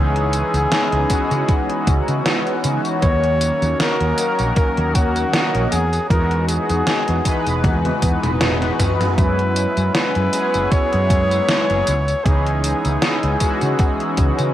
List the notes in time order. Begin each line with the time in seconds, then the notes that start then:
Already playing: C#2 E3 G#3 B3 C#4 D#4 G#4 C#5 G#5 B5 E6
0.16 closed hi-hat
0.33 closed hi-hat, tambourine
0.54 C#2, closed hi-hat, tambourine
0.72 snare, closed hi-hat, tambourine
0.92 C#2, closed hi-hat
1.09 E3 G#3 B3 C#4 F#4, kick, closed hi-hat, tambourine
1.31 C#3, closed hi-hat, tambourine
1.49 kick, closed hi-hat, tambourine
1.70 closed hi-hat
1.87 C#2, kick, closed hi-hat, tambourine
2.08 C#3, closed hi-hat, tambourine
2.26 snare, closed hi-hat, tambourine
2.47 closed hi-hat
2.64 C#3, closed hi-hat, tambourine
2.85 closed hi-hat, tambourine
3.01 D#2 D#3 F#3 A#3 C#4 F#4 C#5 F#5 A#5 D#6, kick, closed hi-hat, tambourine
3.24 closed hi-hat
3.41 closed hi-hat, tambourine
3.62 D#2, closed hi-hat, tambourine
3.80 A#4, snare, closed hi-hat, tambourine
4.01 D#2, closed hi-hat
4.17 D#3 F#3 A#3 C#4 A#4, closed hi-hat, tambourine
4.39 A#1, closed hi-hat, tambourine
4.56 A#4, kick, closed hi-hat, tambourine
4.77 D#2, closed hi-hat
4.95 F#4, kick, closed hi-hat, tambourine
5.16 closed hi-hat, tambourine
5.33 snare, closed hi-hat, tambourine
5.55 A#1, closed hi-hat
5.71 E2 B3 G#4 G#5, closed hi-hat, tambourine
5.93 closed hi-hat, tambourine
6.09 E2 E3 G#3 B3 D#4 F#4 A#4, kick, closed hi-hat, tambourine
6.31 closed hi-hat
6.48 G#4, closed hi-hat, tambourine
6.69 E2, closed hi-hat, tambourine
6.87 snare, closed hi-hat, tambourine
7.08 E2, closed hi-hat
7.24 E3 G#3 B3 D#4 B4, kick, closed hi-hat, tambourine
7.47 E1, closed hi-hat, tambourine
7.64 E2, kick, closed hi-hat, high tom, tambourine
7.85 closed hi-hat, high tom
8.02 E2, kick, closed hi-hat, tambourine
8.23 E1, closed hi-hat, mid tom, tambourine
8.41 snare, closed hi-hat, mid tom, tambourine
8.62 snare, closed hi-hat
8.79 kick, closed hi-hat, mid tom, tambourine
9.01 closed hi-hat, mid tom, tambourine
9.16 F#2 F#3 G#3 B3 C#4 E4 B4 F#5 E6, kick, closed hi-hat, tambourine
9.39 closed hi-hat
9.56 closed hi-hat, tambourine
9.77 F#2, closed hi-hat, tambourine
9.95 B4, snare, closed hi-hat, tambourine
10.15 F#2, closed hi-hat
10.32 F#3 G#3 B3 C#4 G#4, closed hi-hat, tambourine
10.54 F#1, closed hi-hat, tambourine
10.71 C#5, muted fretless electric bass stroke, kick, closed hi-hat, tambourine
10.93 F#2, closed hi-hat
11.10 kick, closed hi-hat, tambourine
11.31 closed hi-hat, tambourine
11.49 snare, closed hi-hat, tambourine
11.70 F#1, closed hi-hat
11.87 C#2 C#5 B5 E6, closed hi-hat, tambourine
12.08 closed hi-hat, tambourine
12.24 C#2 E3 G#3 B3 C#4 D#4 G#4, kick, closed hi-hat, tambourine
12.47 closed hi-hat
12.64 closed hi-hat, tambourine
12.85 C#2, closed hi-hat, tambourine
13.02 snare, closed hi-hat, tambourine
13.23 C#2, closed hi-hat
13.39 E3 G#3 B3 C#4 F#4, kick, closed hi-hat, tambourine
13.61 C#3, closed hi-hat, tambourine
13.79 kick, closed hi-hat, tambourine
14.00 closed hi-hat
14.17 C#2, kick, closed hi-hat, tambourine
14.39 C#3, closed hi-hat, tambourine